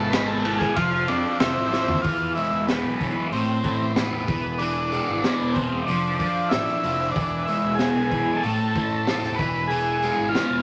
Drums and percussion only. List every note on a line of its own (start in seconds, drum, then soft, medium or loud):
0.13 snare loud
0.13 ride loud
0.45 ride medium
0.61 kick medium
0.61 snare soft
0.76 kick medium
0.76 ride medium
1.08 ride medium
1.40 snare loud
1.40 ride loud
1.73 snare medium
1.88 floor tom medium
2.04 kick loud
2.04 open hi-hat medium
2.37 open hi-hat medium
2.68 snare loud
2.68 open hi-hat medium
3.01 kick medium
3.01 open hi-hat soft
3.33 open hi-hat medium
3.64 kick medium
3.64 open hi-hat medium
3.96 snare loud
3.96 open hi-hat medium
4.28 kick loud
4.28 open hi-hat medium
4.59 open hi-hat medium
4.92 open hi-hat medium
5.24 snare loud
5.24 open hi-hat medium
5.55 kick medium
5.55 open hi-hat medium
5.88 open hi-hat medium
6.20 kick medium
6.20 open hi-hat medium
6.51 snare loud
6.51 open hi-hat medium
6.68 snare soft
6.83 open hi-hat medium
7.16 kick loud
7.16 open hi-hat medium
7.48 open hi-hat medium
7.79 snare loud
7.79 open hi-hat medium
8.11 kick medium
8.11 open hi-hat soft
8.44 open hi-hat medium
8.75 kick medium
8.75 open hi-hat soft
9.07 snare loud
9.07 open hi-hat medium
9.24 snare soft
9.39 kick loud
9.39 open hi-hat medium
9.71 open hi-hat medium
10.03 open hi-hat medium
10.35 snare loud
10.35 open hi-hat medium